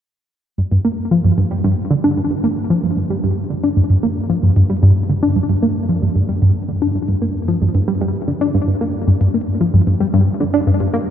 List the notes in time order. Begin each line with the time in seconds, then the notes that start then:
0.58 G2
0.72 G2
0.85 A#3
1.11 F3
1.25 G2
1.38 G2
1.51 G3
1.64 G2
1.91 D3
2.04 D4
2.17 G2
2.30 G2
2.44 A#3
2.70 F3
2.84 G2
2.97 G2
3.10 G3
3.24 G2
3.50 D3
3.64 D4
3.77 G2
3.90 G2
4.03 A#3
4.30 F3
4.43 G2
4.56 G2
4.70 G3
4.83 G2
5.09 D3
5.23 D4
5.36 G2
5.49 G2
5.62 A#3
5.89 F3
6.02 G2
6.16 G2
6.29 G3
6.42 G2
6.68 D3
6.82 D4
6.95 G2
7.08 G2
7.22 A#3
7.48 F3
7.62 G2
7.75 G2
7.88 G3
8.01 G2
8.28 D3
8.41 D4
8.54 G2
8.68 G2
8.81 A#3
9.08 G2
9.21 G2
9.34 A#3
9.61 F3
9.74 G2
9.87 G2
10.00 G3
10.14 G2
10.40 D3
10.54 D4
10.67 G2
10.80 G2
10.94 A#3